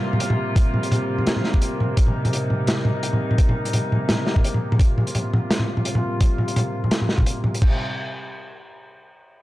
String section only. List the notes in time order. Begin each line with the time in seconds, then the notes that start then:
Already playing: C3 G3 A#3 F4
1.97 D#4
4.79 F4
7.62 C3 G3 C4 D#4